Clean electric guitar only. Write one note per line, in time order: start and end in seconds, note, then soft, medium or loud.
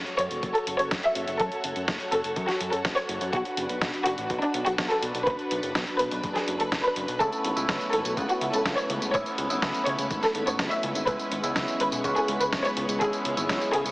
7.20 7.54 A3 medium
7.20 7.54 B3 medium
7.20 7.54 C#4 medium
7.20 7.54 E4 medium
7.56 8.14 A3 medium
7.56 8.14 B3 medium
7.56 8.14 C#4 medium
7.56 8.14 E4 loud
8.17 9.11 A3 medium
8.17 9.11 B3 medium
8.17 9.11 C#4 medium
8.17 9.11 F#4 medium
9.14 9.47 A3 medium
9.14 9.47 B3 medium
9.14 9.47 C#4 medium
9.14 9.47 E4 medium
9.50 10.44 A3 medium
9.50 10.44 B3 medium
9.50 10.44 C#4 medium
9.50 10.44 E4 medium
10.46 11.05 A3 medium
10.46 11.05 B3 medium
10.46 11.05 C#4 medium
10.46 11.05 F#4 medium
11.07 11.41 G#3 medium
11.07 11.41 B3 medium
11.07 11.41 C#4 medium
11.07 11.41 E4 medium
11.43 12.01 G#3 medium
11.43 12.01 B3 medium
11.43 12.01 C#4 medium
11.43 12.01 E4 loud
12.04 12.98 G#3 medium
12.04 12.98 B3 medium
12.04 12.98 C#4 medium
12.04 12.98 F#4 medium
13.01 13.34 G#3 loud
13.01 13.34 B3 medium
13.01 13.34 C#4 medium
13.01 13.34 E4 medium
13.37 13.92 G#3 medium
13.37 13.92 B3 medium
13.37 13.92 C#4 medium
13.37 13.92 E4 medium